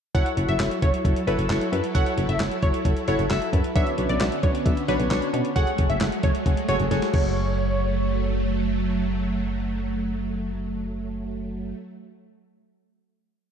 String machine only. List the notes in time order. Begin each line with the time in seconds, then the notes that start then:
0.15 F#3 E4 A4
3.76 D3 B3 C#4
5.56 F#3 G#3 A3
7.13 F#3 A3